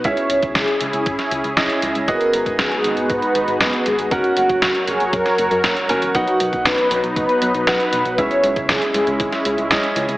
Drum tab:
HH |xxxxxxxxxxxxxxxx|xxxxxxxxxxxxxxxx|xxxxxxxxxxxxxxxx|xxxxxxxxxxxxxxxx|
SD |----o----o--o---|----o-------o---|----o----o--o---|----o-------o---|
BD |o--oo---o---o---|o--oo---o---o---|o--oo---o---o---|o--oo---o---o---|

HH |xxxxxxxxxxxxxxxx|
SD |----o----o--o---|
BD |o--oo---o---o---|